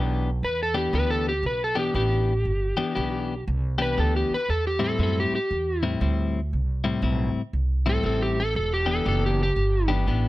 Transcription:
0.00 0.40 B1 medium
0.00 0.29 E3 medium
0.00 0.29 B3 medium
0.00 0.30 D4 medium
0.00 0.30 G4 medium
0.43 0.92 E2 medium
0.43 0.60 B4 medium
0.63 0.77 A4 loud
0.74 0.92 E3 medium
0.74 0.92 B3 medium
0.74 0.93 D4 medium
0.74 0.93 G4 medium
0.93 1.42 D2 medium
0.93 1.31 E3 medium
0.93 1.31 B3 medium
0.93 1.31 D4 medium
0.93 1.32 G4 medium
0.93 1.10 B4 medium
1.11 1.27 A4 medium
1.29 1.44 G4 medium
1.43 1.92 B1 medium
1.43 1.61 B4 medium
1.64 1.79 A4 medium
1.75 1.93 E3 medium
1.75 1.93 B3 medium
1.75 1.94 D4 medium
1.75 1.94 G4 medium
1.75 1.95 G4 medium
1.94 2.44 A1 medium
1.94 2.32 E3 medium
1.94 2.33 B3 medium
1.94 2.33 D4 medium
1.94 2.33 G4 medium
1.94 3.44 G4 medium
2.45 2.75 G1 medium
2.77 2.94 E3 medium
2.77 2.94 B3 medium
2.77 2.94 D4 medium
2.77 2.94 G4 medium
2.77 muted upright bass stroke soft
2.95 3.46 B1 medium
2.95 3.34 E3 medium
2.95 3.34 B3 medium
2.95 3.34 D4 medium
2.95 3.34 G4 medium
3.48 3.96 C2 medium
3.78 3.95 E3 medium
3.78 3.96 B3 medium
3.78 3.96 D4 medium
3.78 3.97 G4 medium
3.78 3.98 B4 medium
3.97 4.28 D2 medium
3.97 4.35 E3 medium
3.97 4.35 B3 medium
3.97 4.36 D4 medium
3.97 4.36 G4 medium
3.97 4.15 A4 medium
4.16 4.32 G4 medium
4.30 muted upright bass stroke soft
4.34 4.49 B4 loud
4.49 4.98 E2 medium
4.49 4.66 A4 medium
4.67 4.83 G4 medium
4.79 4.98 A2 medium
4.79 4.98 G3 medium
4.79 4.98 C4 medium
4.79 4.98 E4 medium
4.84 5.00 A4 medium
4.99 5.29 F#2 medium
4.99 5.37 A2 medium
4.99 5.37 G3 medium
4.99 5.38 C4 medium
4.99 5.38 E4 medium
5.03 5.18 A4 medium
5.20 5.34 G4 medium
5.32 5.84 G4 medium
5.32 muted upright bass stroke soft
5.51 6.00 E2 medium
5.83 5.99 A2 medium
5.83 6.00 G3 medium
5.83 6.00 C4 medium
5.83 6.01 E4 medium
6.00 6.50 D2 medium
6.00 6.39 A2 medium
6.00 6.39 G3 medium
6.00 6.39 C4 medium
6.00 6.40 E4 medium
6.53 7.02 C2 medium
6.84 7.01 A2 medium
6.84 7.01 G3 medium
6.84 7.01 C4 medium
6.84 7.02 E4 medium
7.02 7.33 B1 medium
7.02 7.41 A2 medium
7.02 7.41 G3 medium
7.02 7.41 C4 medium
7.02 7.41 E4 medium
7.35 muted upright bass stroke soft
7.53 8.03 C2 medium
7.86 8.02 A2 medium
7.86 8.02 G3 medium
7.86 8.03 C4 medium
7.86 8.03 E4 medium
7.86 8.05 A4 loud
8.03 8.53 A1 medium
8.03 8.42 A2 medium
8.03 8.42 G3 medium
8.03 8.42 C4 medium
8.03 8.42 E4 medium
8.03 8.21 A4 medium
8.22 8.38 G4 medium
8.40 8.55 A4 loud
8.55 9.04 E1 medium
8.55 8.72 A4 medium
8.74 8.89 G4 loud
8.86 9.04 E3 medium
8.86 9.04 B3 medium
8.86 9.05 D4 medium
8.86 9.05 G4 medium
8.91 9.06 A4 medium
9.05 9.55 F#1 medium
9.05 9.43 E3 medium
9.05 9.43 B3 medium
9.05 9.44 D4 medium
9.05 9.44 G4 medium
9.05 9.23 A4 medium
9.26 9.41 G4 medium
9.43 9.90 G4 medium
9.56 10.05 G1 medium
9.88 10.05 E3 medium
9.88 10.06 B3 medium
9.88 10.07 D4 medium
9.88 10.07 G4 loud
10.07 10.28 A1 medium
10.07 10.28 E3 medium
10.07 10.28 B3 medium
10.07 10.28 D4 medium
10.07 10.28 G4 medium

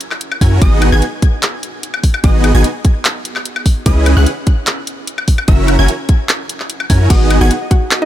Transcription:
0.01 closed hi-hat medium
0.11 clap soft
0.11 high woodblock medium
0.21 closed hi-hat medium
0.32 high woodblock medium
0.41 0.60 F#2 loud
0.41 0.59 C#4 medium
0.41 0.59 E4 medium
0.41 0.59 F#4 medium
0.41 0.59 A#4 medium
0.41 0.59 G#5 medium
0.41 0.59 G#6 medium
0.41 kick medium
0.41 open hi-hat medium
0.61 0.90 G#1 loud
0.61 0.90 B3 medium
0.61 0.90 D#4 medium
0.61 0.90 F#4 medium
0.61 0.90 G#4 medium
0.61 0.90 D#5 medium
0.61 0.90 D#6 medium
0.61 kick loud
0.61 closed hi-hat medium
0.82 closed hi-hat medium
0.82 high woodblock medium
0.92 1.02 G#1 loud
0.92 1.04 B3 loud
0.92 1.04 D#4 medium
0.92 1.04 F#4 medium
0.92 1.04 G#4 medium
0.92 1.04 G#5 loud
0.92 1.04 G#6 loud
1.02 closed hi-hat medium
1.22 kick loud
1.22 closed hi-hat medium
1.43 clap loud
1.43 closed hi-hat medium
1.63 closed hi-hat medium
1.83 closed hi-hat medium
1.94 high woodblock medium
2.04 kick medium
2.04 open hi-hat medium
2.14 high woodblock medium
2.24 2.52 G#1 loud
2.24 2.52 B3 medium
2.24 2.52 D#4 medium
2.24 2.52 F#4 medium
2.24 2.52 G#4 medium
2.24 2.52 D#5 medium
2.24 2.52 D#6 medium
2.24 kick loud
2.24 closed hi-hat medium
2.44 closed hi-hat medium
2.44 high woodblock medium
2.54 2.64 G#1 loud
2.54 2.66 B3 loud
2.54 2.66 D#4 medium
2.54 2.66 F#4 medium
2.54 2.66 G#4 medium
2.54 2.66 G#5 loud
2.54 2.66 G#6 loud
2.64 closed hi-hat medium
2.85 kick loud
2.85 closed hi-hat medium
3.05 clap loud
3.05 closed hi-hat medium
3.25 closed hi-hat medium
3.36 clap soft
3.36 high woodblock medium
3.45 closed hi-hat medium
3.56 high woodblock medium
3.66 kick medium
3.66 open hi-hat medium
3.86 4.15 C#2 loud
3.86 4.14 C#4 medium
3.86 4.14 E4 medium
3.86 4.14 G#4 medium
3.86 4.14 B4 medium
3.86 4.14 D#5 medium
3.86 4.14 D#6 loud
3.86 kick loud
3.86 closed hi-hat medium
4.06 closed hi-hat medium
4.06 high woodblock medium
4.17 4.26 C#2 loud
4.17 4.28 C#4 loud
4.17 4.28 E4 medium
4.17 4.28 G#4 medium
4.17 4.28 B4 medium
4.17 4.28 F#5 loud
4.17 4.28 F#6 loud
4.26 closed hi-hat medium
4.47 kick loud
4.47 closed hi-hat medium
4.67 clap loud
4.67 closed hi-hat medium
4.87 closed hi-hat medium
5.07 closed hi-hat medium
5.18 high woodblock medium
5.28 kick medium
5.28 open hi-hat medium
5.38 high woodblock medium
5.48 5.77 F#1 loud
5.48 5.76 C#4 medium
5.48 5.76 E4 medium
5.48 5.76 F#4 medium
5.48 5.76 A#4 medium
5.48 5.76 E5 medium
5.48 5.76 E6 medium
5.48 kick loud
5.48 closed hi-hat medium
5.68 closed hi-hat medium
5.68 high woodblock medium
5.79 5.88 F#1 loud
5.79 5.90 C#4 loud
5.79 5.90 E4 medium
5.79 5.90 F#4 medium
5.79 5.90 A#4 medium
5.79 5.90 G#5 loud
5.79 5.90 G#6 loud
5.88 closed hi-hat medium
6.09 kick loud
6.09 closed hi-hat medium
6.29 clap loud
6.29 closed hi-hat medium
6.49 closed hi-hat medium
6.60 clap soft
6.70 closed hi-hat medium
6.80 high woodblock medium
6.90 7.08 F#2 loud
6.90 7.08 C#4 medium
6.90 7.08 E4 medium
6.90 7.08 F#4 medium
6.90 7.08 A#4 medium
6.90 7.08 G#5 medium
6.90 7.08 G#6 medium
6.90 kick medium
6.90 open hi-hat loud
7.10 7.39 G#1 loud
7.10 7.39 B3 medium
7.10 7.39 D#4 medium
7.10 7.34 F#4 medium
7.10 7.39 F#4 medium
7.10 7.71 F#4 loud
7.10 7.39 G#4 medium
7.10 7.39 D#5 medium
7.10 7.34 F#5 loud
7.10 7.39 D#6 medium
7.10 kick loud
7.10 closed hi-hat medium
7.10 crash medium
7.21 7.81 G#4 medium
7.30 7.41 D#5 medium
7.30 closed hi-hat medium
7.30 high woodblock medium
7.41 7.50 G#1 medium
7.41 7.52 B3 loud
7.41 7.53 D#4 medium
7.41 7.64 F#4 medium
7.41 7.53 F#4 medium
7.41 7.53 G#4 medium
7.41 7.61 D#5 medium
7.41 7.64 F#5 medium
7.41 7.52 G#5 loud
7.41 7.53 G#6 loud
7.51 8.05 F#5 medium
7.51 closed hi-hat medium
7.62 7.91 D#5 medium
7.71 7.95 F#4 medium
7.71 8.05 F#4 loud
7.71 7.95 F#5 medium
7.71 kick loud
7.71 closed hi-hat medium
7.82 8.05 G#4 medium
7.91 8.02 D#5 medium
7.91 clap loud
7.91 closed hi-hat medium
8.02 8.05 D#4 medium
8.02 8.05 D#5 medium

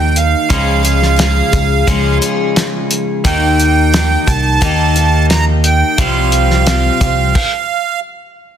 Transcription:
0.00 0.33 D#2 medium
0.00 0.47 D#3 medium
0.00 0.48 A#3 medium
0.00 0.50 A#3 soft
0.00 0.48 D#4 medium
0.00 0.51 D#4 soft
0.00 0.48 G4 medium
0.00 0.50 G4 medium
0.00 0.17 G5 medium
0.16 2.18 F5 medium
0.16 closed hi-hat medium
0.50 1.41 C#2 loud
0.50 0.84 C#3 medium
0.50 0.85 F3 medium
0.50 0.85 G#3 medium
0.50 0.83 C#4 medium
0.50 1.86 F4 loud
0.50 0.82 G#4 medium
0.50 kick loud
0.50 closed hi-hat medium
0.83 1.16 G#3 soft
0.83 1.18 C#4 soft
0.83 1.18 G#4 medium
0.83 closed hi-hat medium
1.02 snare soft
1.16 1.52 F3 medium
1.16 1.53 G#3 medium
1.16 1.53 C#4 medium
1.16 1.51 G#4 medium
1.16 snare loud
1.16 closed hi-hat medium
1.52 1.83 C#2 loud
1.52 1.87 G#3 soft
1.52 1.87 C#4 soft
1.52 1.87 G#4 medium
1.52 kick medium
1.52 closed hi-hat medium
1.87 2.22 C#3 medium
1.87 2.22 F3 medium
1.87 2.22 G#3 loud
1.87 2.21 C#4 medium
1.87 3.23 F4 medium
1.87 2.20 G#4 medium
1.87 kick loud
1.87 closed hi-hat loud
2.21 3.25 G#3 soft
2.21 3.25 C#4 medium
2.21 3.24 G#4 medium
2.21 closed hi-hat medium
2.56 snare loud
2.56 closed hi-hat medium
2.91 closed hi-hat medium
3.24 4.15 D#2 medium
3.24 3.91 D#3 medium
3.24 3.93 A#3 medium
3.24 5.97 D#4 medium
3.24 3.94 D#4 medium
3.24 3.95 G4 medium
3.24 5.96 A#4 medium
3.24 7.32 G5 medium
3.24 4.31 G5 loud
3.24 kick medium
3.24 closed hi-hat medium
3.60 closed hi-hat medium
3.92 4.27 D#3 medium
3.92 4.28 A#3 medium
3.92 4.27 D#4 medium
3.92 4.26 G4 medium
3.92 snare loud
3.92 closed hi-hat medium
4.27 4.58 C2 medium
4.27 4.61 A#3 soft
4.27 4.61 D#4 soft
4.27 4.61 G4 soft
4.27 5.26 A5 loud
4.27 kick medium
4.27 closed hi-hat medium
4.61 5.82 D#2 loud
4.61 4.95 D#3 medium
4.61 4.96 A#3 medium
4.61 4.95 D#4 medium
4.61 4.93 G4 loud
4.61 kick loud
4.61 closed hi-hat medium
4.94 5.99 A#3 soft
4.94 5.99 D#4 soft
4.94 5.98 G4 medium
4.94 closed hi-hat medium
5.30 5.45 A#5 loud
5.30 snare loud
5.30 closed hi-hat medium
5.64 6.00 G5 medium
5.64 closed hi-hat medium
5.98 6.89 C2 loud
5.98 6.67 C3 medium
5.98 6.65 F3 medium
5.98 7.34 G3 loud
5.98 6.67 C4 medium
5.98 7.35 F4 medium
5.98 6.67 F4 medium
5.98 6.68 G4 medium
5.98 7.35 C5 medium
5.98 8.00 F5 loud
5.98 kick loud
5.98 closed hi-hat medium
6.32 closed hi-hat medium
6.51 snare soft
6.66 7.01 F3 medium
6.66 7.02 C4 medium
6.66 7.01 F4 medium
6.66 6.99 G4 medium
6.66 snare loud
6.66 closed hi-hat medium
7.01 7.31 C2 loud
7.01 7.37 C4 soft
7.01 7.36 F4 soft
7.01 7.35 G4 medium
7.01 kick medium
7.01 closed hi-hat medium
7.35 kick loud
7.35 crash loud

